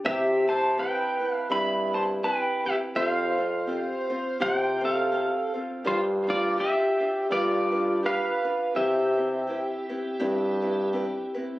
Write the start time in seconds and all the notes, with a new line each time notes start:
0.05 C3 C4 E4 G4 B4 E5
0.48 C4 E4 C5 A5
0.77 C4 E4 G4 B4 G5
1.20 C4 E4 B4
1.34 F5
1.50 G2 C4 E4 G4 B4 E5 B5
1.94 C4 E4 C5 A5
2.23 C4 E4 G4 B4 G5
2.65 C4 E4 G4 B4 E5
2.95 F2 C4 F4 G4 C5 E5
3.07 F5
3.37 C4 F4 C5
3.67 C4 F4 G4 C5
4.10 C4 F4 C5
4.40 C3 C4 F4 G4 C5 G5
4.81 C4 F4 C5
4.85 A4 F5
5.12 C4 F4 G4 C5
5.54 C4 F4 C5
5.84 G2 D4 F4 G4 C5
6.27 D4 F4 C5 D5
6.58 D4 F4 G4 C5 E5
7.00 D4 F4 C5
7.30 G2 D4 F4 G4 B4 D5
7.72 D4 F4 B4
8.03 D4 F4 G4 B4 F5
8.45 D4 F4 B4
8.75 C3 C4 E4 G4 B4 E5
9.17 C4 E4 B4
9.47 C4 E4 G4 B4
9.89 C4 E4 B4
10.20 G2 C4 E4 G4 B4
10.62 C4 E4 B4
10.93 C4 E4 G4 B4
11.35 C4 E4 B4